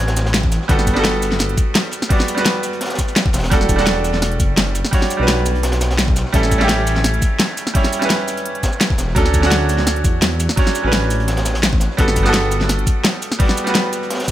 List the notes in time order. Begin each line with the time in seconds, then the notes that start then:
Already playing: A1 F#3 C#4 D4 F#4 B4 C#5
0.08 snare, closed hi-hat
0.16 snare, closed hi-hat, shaker
0.26 snare, closed hi-hat
0.34 snare, closed hi-hat
0.43 kick, snare
0.52 snare, closed hi-hat, shaker
0.61 snare
0.68 G1 G3 B3 F#4 A4, kick, closed hi-hat
0.79 snare
0.87 kick, closed hi-hat, shaker
0.93 G3 B3, snare
0.97 F#4 A4
1.04 snare, closed hi-hat
1.22 closed hi-hat, shaker
1.31 snare
1.39 snare, closed hi-hat
1.49 closed hi-hat
1.57 kick, closed hi-hat, shaker
1.75 snare, closed hi-hat
1.91 closed hi-hat, shaker
2.02 snare, closed hi-hat
2.09 G3 B3 F#4 D5, kick, closed hi-hat, open hi-hat
2.20 snare
2.28 closed hi-hat, shaker
2.35 G3 B3 F#4, snare, closed hi-hat
2.41 B4
2.46 snare, closed hi-hat
2.63 closed hi-hat, shaker
2.73 closed hi-hat
2.81 snare, closed hi-hat
2.85 snare, closed hi-hat
2.90 snare, closed hi-hat
2.94 snare, closed hi-hat
2.99 kick, closed hi-hat, shaker
3.08 closed hi-hat, shaker
3.16 snare, closed hi-hat, shaker
3.26 kick, snare
3.33 E1, snare, closed hi-hat, shaker
3.39 snare, closed hi-hat
3.44 snare, closed hi-hat
3.50 E1 G3 D4 F#4 A4, kick, closed hi-hat
3.61 snare
3.69 kick, closed hi-hat, shaker
3.76 G3 D4 F#4, snare
3.82 A4
3.87 snare, closed hi-hat
4.04 closed hi-hat, shaker
4.14 snare
4.22 snare, closed hi-hat
4.31 closed hi-hat
4.40 F#1, kick, closed hi-hat, shaker
4.57 snare, closed hi-hat
4.75 closed hi-hat, shaker
4.85 snare, closed hi-hat
4.91 G3 D4 F#4 C#5, kick, closed hi-hat, open hi-hat
5.02 snare
5.10 closed hi-hat, shaker
5.17 B1 G3 D4 F#4
5.23 B4
5.28 snare, closed hi-hat
5.46 closed hi-hat, shaker
5.55 closed hi-hat
5.63 snare, closed hi-hat
5.72 snare, closed hi-hat
5.81 snare, closed hi-hat, shaker
5.90 snare, closed hi-hat
5.98 snare, closed hi-hat
6.08 kick, snare
6.16 snare, closed hi-hat, shaker
6.25 snare
6.32 A1 G3 C#4 E4 A4, kick, closed hi-hat
6.43 snare
6.51 kick, closed hi-hat, shaker
6.58 G3 C#4 E4, snare
6.64 G4
6.68 snare, closed hi-hat
6.87 closed hi-hat, shaker
6.96 snare
7.04 snare, closed hi-hat
7.14 closed hi-hat
7.22 kick, closed hi-hat, shaker
7.40 snare, closed hi-hat
7.57 closed hi-hat, shaker
7.67 snare, closed hi-hat
7.74 G3 C#4 E4 C#5, kick, closed hi-hat, open hi-hat
7.84 snare, closed hi-hat
7.93 closed hi-hat, shaker
7.99 G3 C#4 E4, snare, closed hi-hat
8.05 B4
8.10 snare, closed hi-hat
8.28 closed hi-hat, shaker
8.37 closed hi-hat
8.46 closed hi-hat
8.55 closed hi-hat
8.63 kick, snare, closed hi-hat, shaker
8.73 shaker
8.80 snare, closed hi-hat, shaker
8.90 kick, snare
8.98 E1, snare, closed hi-hat, shaker
9.08 snare
9.15 D2 F#3 C#4 D4 A4, kick, closed hi-hat
9.26 snare
9.34 kick, closed hi-hat, shaker
9.40 F#3 C#4 D4, snare
9.46 F#4
9.51 snare, closed hi-hat
9.69 closed hi-hat, shaker
9.78 snare
9.87 snare, closed hi-hat
9.96 closed hi-hat
10.04 E2, kick, closed hi-hat, shaker
10.22 snare, closed hi-hat
10.40 closed hi-hat, shaker
10.49 snare, closed hi-hat
10.56 F#3 C#4 D4 C#5, kick, closed hi-hat, open hi-hat
10.67 snare
10.75 closed hi-hat, shaker
10.82 A1 F#3 C#4 D4
10.87 B4
10.93 snare, closed hi-hat
11.10 closed hi-hat, shaker
11.20 closed hi-hat
11.28 snare, closed hi-hat
11.37 snare, closed hi-hat
11.45 snare, closed hi-hat, shaker
11.54 snare, closed hi-hat
11.63 snare, closed hi-hat
11.73 kick, snare
11.80 snare, closed hi-hat, shaker
11.91 snare
11.97 G1 G3 B3 F#4 A4, kick, closed hi-hat
12.08 snare
12.16 kick, closed hi-hat, shaker
12.23 G3 B3 F#4, snare
12.29 A4
12.33 snare, closed hi-hat
12.51 closed hi-hat, shaker
12.61 snare
12.69 snare, closed hi-hat
12.79 closed hi-hat
12.87 kick, closed hi-hat, shaker
13.04 snare, closed hi-hat
13.22 closed hi-hat, shaker
13.32 snare, closed hi-hat
13.39 G3 B3 F#4 D5, kick, closed hi-hat, open hi-hat
13.49 snare
13.57 closed hi-hat, shaker
13.64 G3 B3 F#4, snare, closed hi-hat
13.70 B4
13.75 snare, closed hi-hat
13.92 closed hi-hat, shaker
14.03 closed hi-hat
14.10 snare, closed hi-hat
14.15 snare, closed hi-hat
14.20 snare, closed hi-hat
14.24 snare, closed hi-hat
14.28 kick, closed hi-hat, shaker